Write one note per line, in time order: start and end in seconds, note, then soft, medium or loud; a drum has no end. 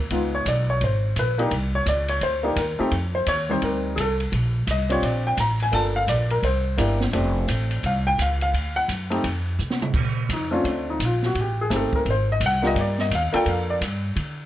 0.10 0.45 C#2 medium
0.10 0.64 G#3 soft
0.10 0.64 B3 soft
0.10 0.64 D#4 soft
0.10 0.65 F4 medium
0.10 kick soft
0.10 ride medium
0.35 0.46 C#5 medium
0.45 0.80 B1 medium
0.45 0.69 D5 medium
0.45 kick soft
0.45 hi-hat pedal medium
0.45 ride medium
0.70 0.82 C#5 medium
0.81 1.15 G#1 medium
0.81 1.15 C5 medium
0.81 kick soft
0.81 ride medium
1.16 1.50 A#1 medium
1.16 1.39 B4 medium
1.16 kick soft
1.16 hi-hat pedal medium
1.16 ride medium
1.38 1.50 A#3 medium
1.38 1.50 D4 medium
1.38 1.50 D#4 medium
1.38 1.51 G4 medium
1.38 ride soft
1.51 1.85 C2 medium
1.51 kick soft
1.51 ride medium
1.75 1.87 C#5 medium
1.86 2.20 C#2 medium
1.86 2.09 D5 medium
1.86 kick soft
1.86 hi-hat pedal soft
1.86 ride medium
2.08 2.22 C#5 medium
2.08 ride soft
2.21 2.55 D2 medium
2.21 2.55 C5 medium
2.21 kick soft
2.21 ride medium
2.43 2.55 A#3 medium
2.43 2.55 D4 medium
2.43 2.56 D#4 medium
2.43 2.56 G4 medium
2.56 2.77 D#2 medium
2.56 2.79 A#4 medium
2.56 kick soft
2.56 hi-hat pedal medium
2.56 ride medium
2.79 2.90 A3 medium
2.79 2.91 C4 medium
2.79 2.91 D#4 medium
2.79 2.91 G4 medium
2.79 muted upright bass stroke soft
2.91 3.26 F2 medium
2.91 kick soft
2.91 ride medium
3.15 3.27 C5 medium
3.26 3.61 D#2 medium
3.26 3.49 C#5 medium
3.26 kick soft
3.26 hi-hat pedal soft
3.26 ride medium
3.49 3.95 G3 medium
3.49 3.95 C4 medium
3.49 3.95 D#4 soft
3.49 3.95 G4 medium
3.49 3.63 C5 medium
3.62 3.96 D2 medium
3.62 3.95 A#4 medium
3.62 kick soft
3.62 ride medium
3.96 4.31 C2 medium
3.96 3.98 G#4 medium
3.96 kick soft
3.96 hi-hat pedal soft
3.96 ride medium
4.00 4.13 A4 medium
4.20 ride soft
4.32 4.66 A#1 medium
4.32 kick soft
4.32 ride medium
4.67 5.01 C2 medium
4.67 4.91 D#5 medium
4.67 kick soft
4.67 hi-hat pedal medium
4.67 ride medium
4.90 5.35 C4 medium
4.90 5.35 D4 medium
4.90 5.36 F4 medium
4.90 5.36 G4 medium
4.90 5.03 C#5 medium
4.90 ride soft
5.02 5.36 A#1 medium
5.02 5.25 D5 medium
5.02 kick soft
5.02 ride medium
5.27 5.38 G5 medium
5.37 5.71 A1 medium
5.37 5.61 A#5 medium
5.37 kick soft
5.37 hi-hat pedal soft
5.37 ride medium
5.60 5.74 G#5 medium
5.60 ride soft
5.72 6.07 G1 medium
5.72 6.25 A#3 soft
5.72 6.26 D4 soft
5.72 6.26 F4 soft
5.72 6.26 A4 medium
5.72 5.95 A5 medium
5.72 kick soft
5.72 ride medium
5.96 6.08 F5 medium
6.07 6.42 A#1 medium
6.07 6.30 D5 medium
6.07 kick soft
6.07 hi-hat pedal medium
6.07 ride medium
6.30 6.43 A#4 medium
6.30 ride soft
6.42 6.77 C2 medium
6.42 6.97 C5 medium
6.42 kick soft
6.42 ride medium
6.77 7.12 G1 medium
6.77 6.98 A#3 medium
6.77 6.98 D4 medium
6.77 6.99 E4 medium
6.77 6.99 G4 medium
6.77 kick soft
6.77 hi-hat pedal medium
6.77 ride medium
7.01 snare soft
7.13 7.47 F1 medium
7.13 8.11 A3 medium
7.13 8.11 C4 medium
7.13 8.12 D4 soft
7.13 8.12 G4 medium
7.13 kick soft
7.13 ride medium
7.48 7.82 A1 medium
7.48 kick soft
7.48 hi-hat pedal medium
7.48 ride medium
7.71 ride soft
7.83 8.17 C2 medium
7.83 8.07 F5 medium
7.83 kick soft
7.83 ride medium
8.07 8.19 G5 medium
8.18 8.53 C#2 medium
8.18 8.41 F5 medium
8.18 kick soft
8.18 hi-hat pedal medium
8.18 ride medium
8.41 8.74 F5 medium
8.41 ride soft
8.53 8.88 D2 medium
8.53 kick soft
8.53 ride medium
8.76 8.84 F#5 medium
8.88 9.23 F#2 medium
8.88 kick soft
8.88 hi-hat pedal medium
8.88 ride medium
9.10 9.22 A3 medium
9.10 9.23 C4 medium
9.10 9.23 D#4 medium
9.10 9.23 G4 medium
9.10 ride soft
9.24 9.58 F2 medium
9.24 kick soft
9.24 ride medium
9.59 9.93 C3 medium
9.59 hi-hat pedal medium
9.70 snare soft
9.82 mid tom medium
9.94 10.28 A#2 medium
9.94 kick medium
9.94 crash medium
10.29 10.63 F2 medium
10.29 kick soft
10.29 hi-hat pedal medium
10.29 ride medium
10.33 10.53 D#4 medium
10.51 10.97 A3 medium
10.51 10.97 C4 medium
10.51 10.65 C#4 medium
10.51 10.67 D4 medium
10.51 10.98 F4 medium
10.64 10.99 D2 medium
10.64 kick soft
10.64 ride medium
10.68 10.88 D4 medium
10.90 11.01 D#4 medium
11.00 11.34 A#1 medium
11.00 kick soft
11.00 hi-hat pedal medium
11.00 ride medium
11.05 11.24 F4 medium
11.22 11.37 F#4 medium
11.22 snare soft
11.35 11.69 A1 medium
11.35 kick soft
11.35 ride medium
11.41 11.60 G4 medium
11.61 11.72 G#4 medium
11.70 11.91 G1 medium
11.70 12.05 A3 medium
11.70 12.06 C4 medium
11.70 12.06 D#4 soft
11.70 12.06 G4 medium
11.70 kick soft
11.70 hi-hat pedal medium
11.70 ride medium
11.76 11.95 A4 medium
11.92 12.07 A#4 medium
11.92 muted upright bass stroke soft
11.92 kick soft
12.05 12.40 G#1 medium
12.05 kick soft
12.05 ride soft
12.10 12.30 C5 medium
12.32 12.42 D#5 medium
12.40 12.75 C2 medium
12.40 kick soft
12.40 hi-hat pedal medium
12.40 ride medium
12.46 12.65 F#5 medium
12.62 13.08 A#3 medium
12.62 13.09 D4 medium
12.62 13.09 F4 medium
12.62 13.09 G4 medium
12.62 snare soft
12.67 12.78 D#5 medium
12.75 13.10 G2 medium
12.75 12.78 C#5 soft
12.75 kick soft
12.75 ride medium
12.81 13.00 D5 medium
12.99 13.12 D#5 medium
12.99 snare soft
13.11 13.32 D#2 medium
13.11 kick soft
13.11 hi-hat pedal medium
13.11 ride medium
13.15 13.35 F5 medium
13.33 13.78 A#3 medium
13.33 13.79 D4 medium
13.33 13.79 F4 medium
13.33 13.79 A4 medium
13.33 13.47 G5 medium
13.33 muted upright bass stroke soft
13.33 ride soft
13.46 13.80 F2 medium
13.46 13.69 F5 medium
13.46 kick soft
13.46 ride medium
13.70 13.77 D5 medium
13.81 14.15 G2 medium
13.81 kick soft
13.81 hi-hat pedal medium
13.81 ride medium
14.16 14.46 D3 medium
14.16 kick soft
14.16 ride medium